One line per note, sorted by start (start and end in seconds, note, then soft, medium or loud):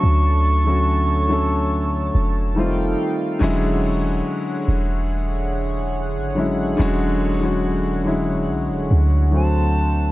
0.00 2.11 D2 loud
0.00 0.44 D3 medium
0.00 2.54 D3 medium
0.00 0.45 F#3 medium
0.00 0.46 A3 medium
0.00 0.46 C#4 medium
0.00 0.47 F#4 medium
0.00 3.37 A4 medium
0.00 2.54 C#5 medium
0.00 2.53 A5 medium
0.00 2.36 C#6 loud
0.65 1.04 D3 medium
0.65 1.05 F#3 medium
0.65 1.05 A3 medium
0.65 1.06 C#4 medium
0.69 1.06 F#4 medium
1.28 2.31 D3 medium
1.28 2.32 F#3 medium
1.28 2.33 A3 medium
1.28 2.33 C#4 medium
1.33 2.34 A4 medium
2.15 2.96 F1 medium
2.55 3.23 D#3 medium
2.55 3.24 G3 medium
2.55 3.24 A3 medium
2.55 3.25 C4 medium
2.55 3.40 D#4 medium
2.55 3.40 F5 medium
2.55 3.40 G5 medium
2.59 3.26 F4 medium
3.39 4.22 E1 loud
3.39 4.43 D3 loud
3.39 10.12 D3 medium
3.39 4.43 F#3 loud
3.39 4.44 G#3 loud
3.39 4.44 C#4 loud
3.39 9.29 G#4 medium
3.39 9.29 C#5 medium
3.39 9.29 F#5 medium
3.44 4.45 E4 loud
4.68 6.18 E1 loud
6.16 6.76 G#1 medium
6.35 6.62 D3 medium
6.35 6.62 F#3 medium
6.35 6.63 G#3 medium
6.35 6.63 C#4 medium
6.40 6.64 E4 medium
6.77 8.50 E1 loud
6.77 7.16 D3 loud
6.77 7.17 F#3 loud
6.77 7.18 G#3 loud
6.77 7.18 C#4 loud
6.82 7.19 F#4 loud
7.41 7.80 D3 medium
7.41 7.81 F#3 medium
7.41 7.81 G#3 medium
7.41 7.82 C#4 medium
7.45 7.82 F#4 medium
8.04 9.07 D3 medium
8.04 9.08 F#3 medium
8.04 9.09 G#3 medium
8.04 9.09 C#4 medium
8.08 9.10 E4 medium
8.48 8.71 B1 medium
8.70 8.90 E1 loud
8.91 10.12 D2 medium
9.31 9.99 D3 medium
9.31 10.00 F#3 medium
9.31 10.12 A3 medium
9.31 10.01 A3 medium
9.31 10.01 C4 medium
9.31 10.12 C5 medium
9.31 10.12 F#5 medium
9.35 10.02 F#4 medium
9.35 10.12 A5 medium